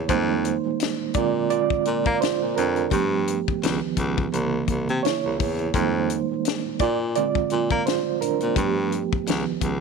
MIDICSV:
0, 0, Header, 1, 4, 480
1, 0, Start_track
1, 0, Key_signature, -4, "minor"
1, 0, Tempo, 705882
1, 63, Time_signature, 4, 2, 24, 8
1, 6666, End_track
2, 0, Start_track
2, 0, Title_t, "Reed electric piano"
2, 0, Program_c, 0, 4
2, 0, Control_c, 0, 64, 127
2, 0, Note_on_c, 0, 49, 47
2, 0, Note_on_c, 0, 52, 42
2, 0, Note_on_c, 0, 58, 52
2, 0, Note_on_c, 0, 64, 69
2, 0, Note_on_c, 0, 73, 88
2, 62, Note_on_c, 0, 72, 86
2, 67, Note_on_c, 0, 51, 47
2, 71, Note_on_c, 0, 55, 41
2, 73, Control_c, 0, 64, 0
2, 74, Note_off_c, 0, 58, 0
2, 74, Note_on_c, 0, 56, 45
2, 75, Note_off_c, 0, 64, 0
2, 75, Note_off_c, 0, 73, 0
2, 76, Note_off_c, 0, 49, 0
2, 77, Note_on_c, 0, 58, 54
2, 77, Note_on_c, 0, 63, 68
2, 78, Note_off_c, 0, 52, 0
2, 201, Control_c, 0, 64, 127
2, 758, Note_off_c, 0, 51, 0
2, 760, Note_off_c, 0, 55, 0
2, 761, Note_off_c, 0, 56, 0
2, 763, Note_off_c, 0, 58, 0
2, 763, Note_off_c, 0, 63, 0
2, 780, Note_on_c, 0, 74, 91
2, 782, Note_on_c, 0, 50, 51
2, 788, Note_on_c, 0, 56, 48
2, 791, Control_c, 0, 64, 0
2, 793, Note_on_c, 0, 60, 57
2, 795, Note_on_c, 0, 65, 69
2, 804, Note_off_c, 0, 72, 0
2, 888, Note_off_c, 0, 74, 0
2, 893, Control_c, 0, 64, 127
2, 900, Note_off_c, 0, 65, 0
2, 1021, Note_on_c, 0, 74, 88
2, 1034, Note_on_c, 0, 65, 70
2, 1440, Note_off_c, 0, 65, 0
2, 1455, Note_off_c, 0, 74, 0
2, 1463, Note_on_c, 0, 74, 59
2, 1475, Note_off_c, 0, 50, 0
2, 1478, Note_off_c, 0, 56, 0
2, 1481, Note_off_c, 0, 60, 0
2, 1502, Note_on_c, 0, 72, 86
2, 1504, Note_off_c, 0, 74, 0
2, 1518, Note_on_c, 0, 65, 63
2, 1735, Note_off_c, 0, 65, 0
2, 1744, Note_on_c, 0, 70, 78
2, 1750, Note_off_c, 0, 72, 0
2, 1759, Note_on_c, 0, 62, 60
2, 1852, Note_off_c, 0, 70, 0
2, 1863, Note_off_c, 0, 62, 0
2, 1985, Note_on_c, 0, 67, 68
2, 1990, Note_on_c, 0, 53, 46
2, 1992, Control_c, 0, 64, 0
2, 1992, Note_on_c, 0, 57, 45
2, 1998, Note_on_c, 0, 59, 51
2, 2099, Control_c, 0, 64, 127
2, 2443, Note_off_c, 0, 53, 0
2, 2444, Note_off_c, 0, 57, 0
2, 2466, Note_off_c, 0, 59, 0
2, 2467, Note_on_c, 0, 51, 50
2, 2470, Note_on_c, 0, 53, 42
2, 2472, Control_c, 0, 64, 0
2, 2474, Note_on_c, 0, 59, 54
2, 2593, Control_c, 0, 64, 127
2, 2917, Note_off_c, 0, 67, 0
2, 2921, Note_off_c, 0, 51, 0
2, 2923, Note_off_c, 0, 53, 0
2, 2925, Note_off_c, 0, 59, 0
2, 2952, Control_c, 0, 64, 0
2, 2952, Note_on_c, 0, 49, 45
2, 2955, Note_on_c, 0, 52, 45
2, 2959, Note_on_c, 0, 58, 54
2, 3088, Control_c, 0, 64, 127
2, 3420, Note_on_c, 0, 73, 86
2, 3433, Note_on_c, 0, 64, 67
2, 3641, Note_off_c, 0, 49, 0
2, 3642, Note_off_c, 0, 52, 0
2, 3644, Note_off_c, 0, 58, 0
2, 3874, Note_off_c, 0, 73, 0
2, 3881, Note_off_c, 0, 64, 0
2, 3905, Note_on_c, 0, 72, 79
2, 3912, Control_c, 0, 64, 0
2, 3914, Note_on_c, 0, 51, 49
2, 3917, Note_on_c, 0, 55, 43
2, 3919, Note_on_c, 0, 56, 41
2, 3921, Note_on_c, 0, 63, 65
2, 3923, Note_on_c, 0, 58, 49
2, 4012, Control_c, 0, 64, 127
2, 4240, Note_off_c, 0, 51, 0
2, 4242, Note_off_c, 0, 55, 0
2, 4243, Note_off_c, 0, 56, 0
2, 4245, Note_off_c, 0, 58, 0
2, 4605, Note_off_c, 0, 63, 0
2, 4626, Note_on_c, 0, 74, 94
2, 4632, Control_c, 0, 64, 0
2, 4638, Note_on_c, 0, 65, 69
2, 4646, Note_off_c, 0, 72, 0
2, 4734, Note_off_c, 0, 74, 0
2, 4743, Note_off_c, 0, 65, 0
2, 4767, Control_c, 0, 64, 127
2, 4866, Note_on_c, 0, 74, 89
2, 4872, Note_on_c, 0, 50, 47
2, 4877, Note_on_c, 0, 56, 46
2, 4880, Note_on_c, 0, 65, 68
2, 4882, Note_on_c, 0, 60, 52
2, 5324, Note_off_c, 0, 65, 0
2, 5345, Note_on_c, 0, 72, 88
2, 5358, Note_on_c, 0, 65, 64
2, 5359, Note_off_c, 0, 74, 0
2, 5561, Note_off_c, 0, 50, 0
2, 5563, Note_off_c, 0, 56, 0
2, 5565, Note_off_c, 0, 60, 0
2, 5575, Note_off_c, 0, 65, 0
2, 5583, Note_on_c, 0, 70, 78
2, 5591, Note_off_c, 0, 72, 0
2, 5595, Note_on_c, 0, 62, 62
2, 5691, Note_off_c, 0, 70, 0
2, 5701, Note_off_c, 0, 62, 0
2, 5822, Note_on_c, 0, 67, 68
2, 5827, Note_on_c, 0, 53, 47
2, 5832, Note_on_c, 0, 57, 44
2, 5834, Control_c, 0, 64, 0
2, 5834, Note_on_c, 0, 59, 53
2, 5948, Control_c, 0, 64, 127
2, 6281, Note_off_c, 0, 53, 0
2, 6284, Note_off_c, 0, 57, 0
2, 6307, Note_on_c, 0, 51, 46
2, 6308, Note_off_c, 0, 59, 0
2, 6310, Note_on_c, 0, 53, 43
2, 6311, Control_c, 0, 64, 0
2, 6316, Note_on_c, 0, 59, 53
2, 6445, Control_c, 0, 64, 127
2, 6666, Note_off_c, 0, 51, 0
2, 6666, Note_off_c, 0, 53, 0
2, 6666, Note_off_c, 0, 59, 0
2, 6666, Note_off_c, 0, 67, 0
2, 6666, End_track
3, 0, Start_track
3, 0, Title_t, "Baritone saxophone"
3, 0, Program_c, 1, 67
3, 64, Note_on_c, 1, 41, 91
3, 371, Note_off_c, 1, 41, 0
3, 445, Note_on_c, 1, 46, 40
3, 485, Note_off_c, 1, 46, 0
3, 684, Note_on_c, 1, 46, 41
3, 724, Note_off_c, 1, 46, 0
3, 786, Note_on_c, 1, 46, 80
3, 1092, Note_off_c, 1, 46, 0
3, 1270, Note_on_c, 1, 46, 78
3, 1378, Note_off_c, 1, 46, 0
3, 1404, Note_on_c, 1, 58, 88
3, 1487, Note_off_c, 1, 58, 0
3, 1644, Note_on_c, 1, 46, 63
3, 1728, Note_off_c, 1, 46, 0
3, 1750, Note_on_c, 1, 41, 77
3, 1944, Note_off_c, 1, 41, 0
3, 1985, Note_on_c, 1, 43, 88
3, 2292, Note_off_c, 1, 43, 0
3, 2370, Note_on_c, 1, 37, 41
3, 2409, Note_off_c, 1, 37, 0
3, 2465, Note_on_c, 1, 37, 87
3, 2575, Note_off_c, 1, 37, 0
3, 2603, Note_on_c, 1, 37, 42
3, 2644, Note_off_c, 1, 37, 0
3, 2704, Note_on_c, 1, 37, 75
3, 2900, Note_off_c, 1, 37, 0
3, 2945, Note_on_c, 1, 36, 78
3, 3140, Note_off_c, 1, 36, 0
3, 3185, Note_on_c, 1, 36, 72
3, 3295, Note_off_c, 1, 36, 0
3, 3329, Note_on_c, 1, 48, 89
3, 3410, Note_off_c, 1, 48, 0
3, 3571, Note_on_c, 1, 36, 71
3, 3675, Note_on_c, 1, 40, 85
3, 3685, Note_off_c, 1, 36, 0
3, 3866, Note_off_c, 1, 40, 0
3, 3906, Note_on_c, 1, 41, 89
3, 4212, Note_off_c, 1, 41, 0
3, 4286, Note_on_c, 1, 46, 41
3, 4326, Note_off_c, 1, 46, 0
3, 4527, Note_on_c, 1, 46, 41
3, 4566, Note_off_c, 1, 46, 0
3, 4627, Note_on_c, 1, 46, 91
3, 4933, Note_off_c, 1, 46, 0
3, 5112, Note_on_c, 1, 46, 77
3, 5219, Note_off_c, 1, 46, 0
3, 5245, Note_on_c, 1, 58, 83
3, 5328, Note_off_c, 1, 58, 0
3, 5587, Note_on_c, 1, 46, 42
3, 5640, Note_off_c, 1, 46, 0
3, 5725, Note_on_c, 1, 46, 77
3, 5808, Note_off_c, 1, 46, 0
3, 5827, Note_on_c, 1, 43, 85
3, 6133, Note_off_c, 1, 43, 0
3, 6208, Note_on_c, 1, 37, 42
3, 6247, Note_off_c, 1, 37, 0
3, 6307, Note_on_c, 1, 37, 89
3, 6417, Note_off_c, 1, 37, 0
3, 6444, Note_on_c, 1, 37, 41
3, 6484, Note_off_c, 1, 37, 0
3, 6541, Note_on_c, 1, 37, 76
3, 6666, Note_off_c, 1, 37, 0
3, 6666, End_track
4, 0, Start_track
4, 0, Title_t, "Drums"
4, 62, Note_on_c, 9, 36, 98
4, 62, Note_on_c, 9, 42, 73
4, 130, Note_off_c, 9, 36, 0
4, 130, Note_off_c, 9, 42, 0
4, 304, Note_on_c, 9, 42, 65
4, 372, Note_off_c, 9, 42, 0
4, 543, Note_on_c, 9, 42, 84
4, 563, Note_on_c, 9, 38, 104
4, 611, Note_off_c, 9, 42, 0
4, 631, Note_off_c, 9, 38, 0
4, 774, Note_on_c, 9, 42, 61
4, 780, Note_on_c, 9, 36, 94
4, 842, Note_off_c, 9, 42, 0
4, 848, Note_off_c, 9, 36, 0
4, 1021, Note_on_c, 9, 42, 68
4, 1089, Note_off_c, 9, 42, 0
4, 1158, Note_on_c, 9, 36, 75
4, 1226, Note_off_c, 9, 36, 0
4, 1261, Note_on_c, 9, 42, 52
4, 1329, Note_off_c, 9, 42, 0
4, 1400, Note_on_c, 9, 36, 82
4, 1468, Note_off_c, 9, 36, 0
4, 1508, Note_on_c, 9, 42, 61
4, 1519, Note_on_c, 9, 38, 91
4, 1576, Note_off_c, 9, 42, 0
4, 1587, Note_off_c, 9, 38, 0
4, 1751, Note_on_c, 9, 42, 69
4, 1819, Note_off_c, 9, 42, 0
4, 1876, Note_on_c, 9, 42, 32
4, 1944, Note_off_c, 9, 42, 0
4, 1981, Note_on_c, 9, 36, 92
4, 1982, Note_on_c, 9, 42, 71
4, 2049, Note_off_c, 9, 36, 0
4, 2050, Note_off_c, 9, 42, 0
4, 2228, Note_on_c, 9, 42, 60
4, 2296, Note_off_c, 9, 42, 0
4, 2367, Note_on_c, 9, 36, 77
4, 2435, Note_off_c, 9, 36, 0
4, 2470, Note_on_c, 9, 42, 86
4, 2490, Note_on_c, 9, 38, 105
4, 2538, Note_off_c, 9, 42, 0
4, 2558, Note_off_c, 9, 38, 0
4, 2698, Note_on_c, 9, 42, 63
4, 2699, Note_on_c, 9, 36, 73
4, 2766, Note_off_c, 9, 42, 0
4, 2767, Note_off_c, 9, 36, 0
4, 2841, Note_on_c, 9, 36, 84
4, 2909, Note_off_c, 9, 36, 0
4, 2948, Note_on_c, 9, 42, 68
4, 3016, Note_off_c, 9, 42, 0
4, 3181, Note_on_c, 9, 42, 52
4, 3182, Note_on_c, 9, 36, 75
4, 3249, Note_off_c, 9, 42, 0
4, 3250, Note_off_c, 9, 36, 0
4, 3323, Note_on_c, 9, 42, 30
4, 3391, Note_off_c, 9, 42, 0
4, 3433, Note_on_c, 9, 42, 61
4, 3444, Note_on_c, 9, 38, 90
4, 3501, Note_off_c, 9, 42, 0
4, 3512, Note_off_c, 9, 38, 0
4, 3672, Note_on_c, 9, 36, 87
4, 3673, Note_on_c, 9, 46, 46
4, 3740, Note_off_c, 9, 36, 0
4, 3741, Note_off_c, 9, 46, 0
4, 3800, Note_on_c, 9, 42, 32
4, 3868, Note_off_c, 9, 42, 0
4, 3903, Note_on_c, 9, 36, 97
4, 3905, Note_on_c, 9, 42, 73
4, 3971, Note_off_c, 9, 36, 0
4, 3973, Note_off_c, 9, 42, 0
4, 4146, Note_on_c, 9, 42, 60
4, 4214, Note_off_c, 9, 42, 0
4, 4386, Note_on_c, 9, 42, 85
4, 4406, Note_on_c, 9, 38, 103
4, 4454, Note_off_c, 9, 42, 0
4, 4474, Note_off_c, 9, 38, 0
4, 4619, Note_on_c, 9, 42, 62
4, 4623, Note_on_c, 9, 36, 94
4, 4687, Note_off_c, 9, 42, 0
4, 4691, Note_off_c, 9, 36, 0
4, 4863, Note_on_c, 9, 42, 68
4, 4931, Note_off_c, 9, 42, 0
4, 5000, Note_on_c, 9, 36, 75
4, 5068, Note_off_c, 9, 36, 0
4, 5099, Note_on_c, 9, 42, 52
4, 5167, Note_off_c, 9, 42, 0
4, 5240, Note_on_c, 9, 36, 82
4, 5241, Note_on_c, 9, 42, 31
4, 5308, Note_off_c, 9, 36, 0
4, 5309, Note_off_c, 9, 42, 0
4, 5349, Note_on_c, 9, 42, 63
4, 5360, Note_on_c, 9, 38, 88
4, 5417, Note_off_c, 9, 42, 0
4, 5428, Note_off_c, 9, 38, 0
4, 5589, Note_on_c, 9, 42, 67
4, 5657, Note_off_c, 9, 42, 0
4, 5715, Note_on_c, 9, 42, 31
4, 5783, Note_off_c, 9, 42, 0
4, 5821, Note_on_c, 9, 36, 94
4, 5823, Note_on_c, 9, 42, 73
4, 5889, Note_off_c, 9, 36, 0
4, 5891, Note_off_c, 9, 42, 0
4, 6067, Note_on_c, 9, 42, 64
4, 6135, Note_off_c, 9, 42, 0
4, 6206, Note_on_c, 9, 36, 78
4, 6274, Note_off_c, 9, 36, 0
4, 6305, Note_on_c, 9, 42, 85
4, 6325, Note_on_c, 9, 38, 105
4, 6373, Note_off_c, 9, 42, 0
4, 6393, Note_off_c, 9, 38, 0
4, 6536, Note_on_c, 9, 42, 62
4, 6538, Note_on_c, 9, 36, 79
4, 6604, Note_off_c, 9, 42, 0
4, 6606, Note_off_c, 9, 36, 0
4, 6666, End_track
0, 0, End_of_file